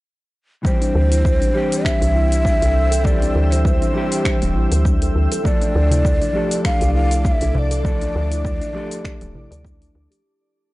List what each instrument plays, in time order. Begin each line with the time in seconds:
0.63 clean electric guitar E3 G3 C4, ambient pad C5 E5 G5 E6, ney C5, kick, shaker
0.67 clean electric guitar G4
0.82 steel tongue drum D4, open hi-hat, shaker
0.95 fm bass D2
1.11 steel tongue drum E4, open hi-hat, shaker
1.25 kick, shaker
1.41 fm bass A1, steel tongue drum D4, open hi-hat, shaker
1.53 clean electric guitar E3 G3 C4, steel tongue drum G4
1.57 clean electric guitar G4
1.72 open hi-hat, shaker
1.84 steel tongue drum D4, ney E5, finger snap, kick, shaker
2.02 fm bass C2, open hi-hat, shaker
2.15 steel tongue drum E4
2.32 open hi-hat, shaker
2.45 steel tongue drum D4, kick, shaker
2.62 fm bass C2, steel tongue drum A4, open hi-hat, shaker
2.91 steel tongue drum A4, open hi-hat, shaker
3.03 clean electric guitar E3 G3 C4, ney D5, kick, shaker
3.07 clean electric guitar G4
3.22 steel tongue drum D4, open hi-hat, shaker
3.35 fm bass D2
3.51 steel tongue drum E4, ney C5, open hi-hat, shaker
3.65 ney C5, kick, shaker
3.82 fm bass A1, steel tongue drum D4, open hi-hat, shaker
3.93 clean electric guitar E3 G3 C4, steel tongue drum G4
3.97 clean electric guitar G4
4.12 open hi-hat, shaker
4.25 steel tongue drum D4, finger snap, kick, shaker
4.42 fm bass D1, open hi-hat, shaker
4.56 fm bass A1, steel tongue drum E4
4.72 fm bass D2, open hi-hat, shaker
4.85 steel tongue drum D4, kick, shaker
5.02 steel tongue drum A4, open hi-hat, shaker
5.16 fm bass D2
5.32 steel tongue drum A4, open hi-hat, shaker
5.43 clean electric guitar F3 A3 D4 A4, ambient pad A4 D5 D6, ney D5, kick, shaker
5.61 steel tongue drum D4, open hi-hat, shaker
5.75 fm bass D2, darbuka ka
5.91 steel tongue drum E4, open hi-hat, darbuka dum, shaker
6.05 kick, shaker
6.21 fm bass A1, steel tongue drum D4, open hi-hat, shaker
6.33 clean electric guitar F3 A3 D4 A4, steel tongue drum G4
6.51 open hi-hat, shaker
6.65 steel tongue drum D4, ney F5, finger snap, kick, shaker
6.81 fm bass C2, open hi-hat, shaker
6.94 steel tongue drum E4, ney F5, darbuka tek
7.11 open hi-hat, shaker
7.25 steel tongue drum D4, ney E5, kick, shaker
7.41 fm bass C2, steel tongue drum A4, open hi-hat, shaker
7.55 ney D5 E5, darbuka dum
7.71 steel tongue drum A4, open hi-hat, shaker
7.83 clean electric guitar F3 A3 D4 A4, kick, shaker
8.01 steel tongue drum D4, open hi-hat, shaker
8.14 fm bass D2, darbuka ka
8.31 steel tongue drum E4, open hi-hat, shaker
8.45 kick, shaker
8.61 fm bass A1, steel tongue drum D4, open hi-hat, shaker
8.73 clean electric guitar F3 A3 D4, steel tongue drum G4, darbuka tek
8.77 clean electric guitar A4
8.91 open hi-hat, darbuka ka, shaker
9.05 steel tongue drum D4, finger snap, kick, shaker
9.21 fm bass D1, open hi-hat, darbuka ka, shaker
9.35 fm bass A1, steel tongue drum E4, darbuka dum
9.51 fm bass D2, steel tongue drum D5, open hi-hat, darbuka ka, shaker
9.64 steel tongue drum D4, kick, shaker
9.81 steel tongue drum D4, open hi-hat, shaker
9.94 fm bass D2, steel tongue drum D4, darbuka ka
10.11 steel tongue drum G4, open hi-hat, shaker